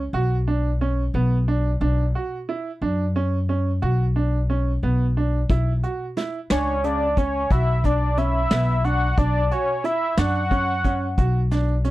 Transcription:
0.13 B1 F#4
0.48 D4
0.81 C#4
1.14 B1 B3
1.48 D4
1.81 B1 D4
2.15 F#4
2.49 E4
2.82 F#2 D4
3.16 C#4
3.49 C#4
3.82 B1 F#4
4.16 D4
4.50 C#4
4.83 B1 B3
5.17 D4
5.49 B1 E4, kick, closed hi-hat
5.83 F#4, closed hi-hat
6.17 E4, snare, closed hi-hat
6.50 C#2 D4 C#5 G#5, snare, closed hi-hat
6.84 C#3 D5 A5, closed hi-hat
7.17 C#4 C#5 G#5, kick, closed hi-hat
7.50 B1 F#4 E5 B5, kick, closed hi-hat
7.84 D4 D5 A5, kick, closed hi-hat
8.18 C#4 E5 B5, closed hi-hat
8.51 B1 B3, snare, closed hi-hat
8.84 D4 F#5 C#6, closed hi-hat
9.18 B1 D4 D5 A5, kick, closed hi-hat
9.51 F#4 C#5 G#5, closed hi-hat
9.84 E4 E5 B5, closed hi-hat
10.17 F#2 D4 F#5 C#6, snare, closed hi-hat
10.51 C#4, kick, closed hi-hat
10.84 C#4, kick, closed hi-hat
11.18 B1 F#4, kick, closed hi-hat
11.51 D4, snare, closed hi-hat
11.84 C#4, closed hi-hat

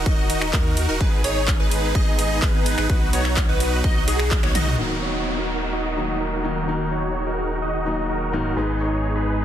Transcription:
Already playing: D#3 D#4 F#4 A#4
0.06 D#1 D#4 F#4 D#5, kick, ride
0.30 open hi-hat, ride
0.42 finger snap
0.53 D#2 D#4 F#4 A#4, kick, clap, ride
0.77 open hi-hat, ride
0.89 D#1 D#4 F#4 A#4
1.01 G#1 G#3 B3 D#4 G#4 B4, kick, ride
1.24 G#1 D#4 G#4 C#5, open hi-hat, ride
1.48 kick, clap, ride
1.60 G#1 D#4 G#4 B4
1.71 open hi-hat, ride
1.95 G#1 D#4 G#4 D#5, kick, ride
2.19 open hi-hat, ride
2.42 G#1 D#4 B4, kick, clap, ride
2.66 open hi-hat, ride
2.78 G#1 D#4 G#4 B4, finger snap
2.90 B1 F#3 D#4 F#4 B4, kick, ride
3.13 B1 D#4 F#4 C#5, open hi-hat, ride
3.25 finger snap, clap
3.37 kick, clap, ride
3.49 B1 D#4 F#4 B4
3.60 open hi-hat, ride
3.84 B1 D#4 F#4 D#5, kick, ride
4.08 B1 D#4 F#4 G#4, open hi-hat, ride
4.19 finger snap
4.31 kick, clap, ride
4.43 B1 D#4 F#4 C#5, finger snap, high tom
4.55 B1 D#4 F#4 D#5, open hi-hat, mid tom, ride
4.67 mid tom
4.77 D#1 D#3 F#3 A#3 D#4 F#4 A#4, downlifter
5.02 D#4 F#4 C#5
5.38 D#4 F#4 A#4
5.73 D#4 F#4 D#5
5.96 D#3 F#3 A#3 D#4
6.20 D#4 F#4 A#4
6.43 D#3 F#3 A#3 D#4
6.56 D#4 F#4 A#4
6.66 D#3 F#3 A#3 D#4 F#4 G#4 A#4
6.91 D#4 F#4 C#5
7.26 D#4 F#4 A#4
7.62 D#4 F#4 D#5
7.85 D#3 F#3 A#3 D#4
8.09 D#4 F#4 A#4
8.32 G#2 D#3 F#3 A#3 D#4
8.45 D#4 F#4 A#4
8.55 G#1 G#2 D#3 G#3 B3 D#4 G#4 B4, riser
8.80 D#4 G#4 C#5
9.16 D#4 G#4 B4

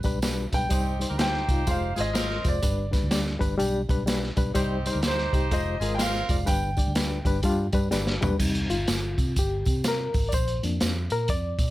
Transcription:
0.03 B1 G3 D4 B4, kick, closed hi-hat, tambourine
0.22 G3 D4 B4, snare, closed hi-hat, tambourine
0.52 B1 G3 D4 B4 G5, kick, closed hi-hat, tambourine
0.69 C2 G3 C4 D#4 G4 C5, kick, closed hi-hat, tambourine
1.00 G3 D#4 C5, closed hi-hat, tambourine
1.09 D2 D#4 G4 A#4
1.18 G3 D#4 G4 C5 G5, snare, closed hi-hat, tambourine
1.34 snare
1.49 C2 G3 D#4 F4, kick, closed hi-hat, tambourine
1.67 F1 G#3 F4 C5 F5, kick, closed hi-hat, tambourine
1.96 G#1 G#3 C4 F4 G#4 C5, closed hi-hat, tambourine
2.00 D#5
2.14 G#3 C4 F4 A#4 C5, snare, closed hi-hat, tambourine
2.30 snare
2.44 F1 G#3 F4 C5 D5, kick, closed hi-hat, tambourine
2.63 G1 G3 D4 B4, kick, closed hi-hat, tambourine
2.91 G3 D4 B4, kick, snare, closed hi-hat, tambourine
3.03 D2
3.11 G3 D4 D5, snare, closed hi-hat, tambourine
3.26 snare
3.39 G1 G3 D4 B4, kick, closed hi-hat, tambourine
3.57 B1 G3 D4 G4, closed hi-hat, tambourine
3.89 B1 G3 D4 B4, kick, closed hi-hat, tambourine
4.06 G3 D4 B4, snare, closed hi-hat, tambourine
4.24 snare
4.36 B1 G3 D4 B4, kick, closed hi-hat, tambourine
4.54 C2 G3 C4 D#4 G4 C5, kick, closed hi-hat, tambourine
4.86 G3 D#4 C5, closed hi-hat, tambourine
4.92 D2 D#4 G4 A#4
5.02 G3 D#4 G4 C5, snare, closed hi-hat, tambourine
5.08 C5
5.18 snare
5.33 C2 G3 D#4 G4, kick, closed hi-hat, tambourine
5.51 F1 G#3 F4 C5 D#5, kick, closed hi-hat, tambourine
5.80 G#1 G#3 C4 F4 G#4 A#4, closed hi-hat, tambourine
5.95 F4 G5
5.99 G#3 C4 F4 A#4 C5 F5, snare, closed hi-hat, tambourine
6.15 snare
6.29 F1 G#3 F4 D5, kick, closed hi-hat, tambourine
6.45 G1 G3 D4 B4 G5, kick, closed hi-hat, tambourine
6.77 G3 D4 D5, kick, closed hi-hat, tambourine
6.87 D2
6.95 G3 D4 B4, snare, closed hi-hat, tambourine
7.25 G1 G3 D4 B4, kick, closed hi-hat, tambourine
7.43 G2 G3 D4 F4, kick, closed hi-hat, tambourine
7.73 G2 G3 D4 B4, kick, closed hi-hat, tambourine
7.91 G1 G3 D4 B4, snare, tambourine
8.07 snare
8.21 B1 G3 D4 B4, floor tom, tambourine
8.39 C2 G3 C4 D#4, kick, crash, tambourine
8.55 closed hi-hat
8.69 G1 F4, closed hi-hat, tambourine
8.88 G1, snare, closed hi-hat, tambourine
9.18 C3, kick, closed hi-hat, tambourine
9.36 G1 G4, kick, closed hi-hat, tambourine
9.65 C3, kick, closed hi-hat, tambourine
9.84 A#4, snare, closed hi-hat, tambourine
10.14 G#1, kick, open hi-hat, tambourine
10.29 D5, tambourine
10.33 A#1 C5, kick, closed hi-hat
10.48 closed hi-hat
10.63 F2 F3 A#3 D4, closed hi-hat, tambourine
10.80 F2, snare, closed hi-hat, tambourine
11.10 A#2 A#4, closed hi-hat, tambourine
11.28 F2 D5, kick, closed hi-hat, tambourine
11.59 A#2, kick, closed hi-hat, tambourine

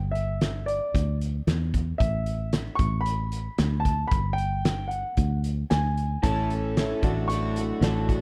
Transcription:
Already playing: G1
0.11 E5, closed hi-hat
0.41 snare, closed hi-hat
0.66 D5, closed hi-hat
0.94 D2, kick, closed hi-hat
1.21 closed hi-hat
1.47 E2, snare, closed hi-hat
1.74 kick, closed hi-hat
1.98 A1 E5, kick, closed hi-hat
2.26 closed hi-hat
2.53 snare, closed hi-hat
2.75 A1 C#6, kick, closed hi-hat
3.01 B5
3.06 closed hi-hat
3.32 closed hi-hat
3.58 D2, snare, closed hi-hat
3.80 A5
3.85 kick, closed hi-hat
4.07 G1 B5
4.11 kick, closed hi-hat
4.33 G5
4.38 closed hi-hat
4.65 snare, closed hi-hat
4.88 F#5, closed hi-hat
5.17 D2, kick, closed hi-hat
5.44 closed hi-hat
5.70 D2 G#5, snare, closed hi-hat
5.97 closed hi-hat
6.23 A1 A2 E3 A3 C#4 E4 A4 C#5 A5, kick, closed hi-hat
6.50 A3 C#4 A4, closed hi-hat
6.77 E3 A3 C#4 E4 A4 C#5, snare, closed hi-hat
7.01 A1 A2 F#3 A3 F#4 A4 D5, kick, closed hi-hat
7.07 A3 D4
7.28 A2 C#6, closed hi-hat
7.32 D3 A3 D4 F#4
7.56 D4 F#4, closed hi-hat
7.60 A3
7.80 A1 A2 D3 F#3 A3 F#4 A4 D5, snare, closed hi-hat
7.85 D4 F#4
8.09 D4 F#4, kick, closed hi-hat
8.13 A3

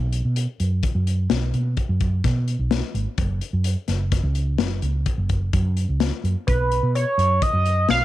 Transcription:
Already playing: B1
0.13 closed hi-hat
0.25 B2
0.36 closed hi-hat
0.60 F#2, closed hi-hat
0.83 kick, closed hi-hat
0.95 F#2
1.07 closed hi-hat
1.30 B1, snare, closed hi-hat
1.54 B2, closed hi-hat
1.77 kick, closed hi-hat
1.89 F#2
2.00 kick, closed hi-hat
2.24 B2, kick, snare, closed hi-hat
2.48 closed hi-hat
2.59 B1
2.71 snare, closed hi-hat
2.94 G#1, closed hi-hat
3.18 F#1, kick, closed hi-hat
3.41 closed hi-hat
3.53 F#2
3.64 closed hi-hat
3.88 F#1, snare, closed hi-hat
4.12 kick, snare, closed hi-hat
4.23 C#2
4.35 closed hi-hat
4.58 F#1, snare, closed hi-hat
4.82 C#2, closed hi-hat
5.06 kick, closed hi-hat
5.18 F#1
5.29 kick, closed hi-hat
5.53 F#2, kick, closed hi-hat
5.77 closed hi-hat
5.89 C#2
6.00 snare, closed hi-hat
6.24 F#2, closed hi-hat
6.47 B1 B4, kick, closed hi-hat
6.72 closed hi-hat
6.83 B2
6.95 C#5, closed hi-hat
7.18 F#2, closed hi-hat
7.42 D#5, kick, closed hi-hat
7.53 F#2
7.66 closed hi-hat
7.89 B1 F5, snare, closed hi-hat

